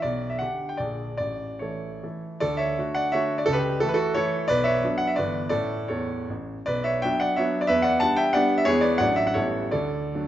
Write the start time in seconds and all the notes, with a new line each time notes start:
0.02 B1 D5
0.30 E5
0.39 D3 D4 G4 F#5
0.69 G5
0.77 A#1 D3 D4 G#4 D5
1.17 A1 D5
1.59 E3 A3 A4 C#5
2.03 E3 A3 A4
2.40 D2 A4 D5
2.57 C#5 E5
2.78 D3 A3 F#4
2.95 D5 F#5
3.12 D3 A3 F#4 C#5 E5
3.38 D5
3.46 C#2 A4
3.53 G4 B4
3.80 E3 A3 E4 A4
3.89 B4
3.94 F#4 A4
4.14 E3 A3 E4 A4 C#5
4.48 B1 B4 D5
4.64 C#5 E5
4.84 F#3 B3 D4
4.98 F#5
5.07 E5
5.16 G1 E3 B3 E4 B4 D5
5.49 A2 C#4 E4 A4 D5
5.88 E2 A4 C#5
6.30 A1
6.66 B1 B4 D5
6.84 C#5 E5
7.02 F#3 B3 D4 E5 G5
7.20 D5 F#5
7.36 F#3 B3 D4 C#5 E5
7.61 D5
7.67 E2 B4 E5
7.82 D5 F#5
8.00 G3 B3 D4 F#5 A5
8.16 E5 G5
8.33 G3 B3 D4 D5 F#5
8.58 E5
8.65 E2 G#3 B3 E4 G#4 C#5
8.81 B4 D5
8.98 A1 F#3 A3 D4 D5 F#5
9.16 E5
9.27 F#5
9.34 A1 G3 B3 E4 A4 C#5
9.71 D2 A4 D5
10.14 F#3 A3 D4